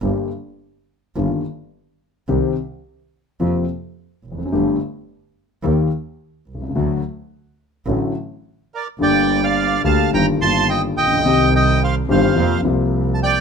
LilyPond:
<<
  \new Staff \with { instrumentName = "Bandoneon" } { \time 4/4 \key g \minor \tempo 4 = 107 r1 | r1 | r1 | r2. r8 <bes' d''>8 |
<d'' g''>8. <d'' f''>8. <f'' a''>8 <g'' bes''>8 <a'' c'''>8 <ees'' g''>8 <ees'' g''>8~ | <ees'' g''>8 <ees'' g''>8 <c'' f''>8 <c'' f''>4 r8. r32 a''32 <d'' g''>8 | }
  \new Staff \with { instrumentName = "Grand piano" } { \clef bass \time 4/4 \key g \minor << { <g,, g, d g bes g'>8 r4. <g,, g, ees g bes f'>8 r4. | <c, c ees g c' g'>8 r4. <f, c f bes f'>8 r4. | <g,, g, d g a g'>8 r4. <ees, ees g bes g'>8 r4. | <d, d fis a fis'>8 r4. <a,, a, d fis a fis'>8 r4. |
<g,, g, d g bes g'>4. <d, d g bes g'>8 <g,, g, ees g bes f'>8 <g,, g, ees g bes f'>4. | <c, c ees g c' g'>4. <g,, g, ees g c' g'>8 <f, c f bes f'>8 <c, c f bes f'>4. | } \\ { r1 | r2. r8 r32 e,32 f,32 fis,32 | r2. r8 r32 b,,32 c,32 cis,32 | r1 |
r2. r8 r32 a,,32 bes,,32 b,,32 | r1 | } >> }
  \new Staff \with { instrumentName = "Double bass" } { \clef bass \time 4/4 \key g \minor g,,8 r4. g,,8 r4. | c,8 r4. f,8 r4 f,,8 | g,,8 r4. ees,8 r4 c,8 | d,8 r4. a,,8 r4. |
g,,4. d,8 g,,8 g,,4 bes,,8 | c,4. g,,8 f,8 c,4. | }
>>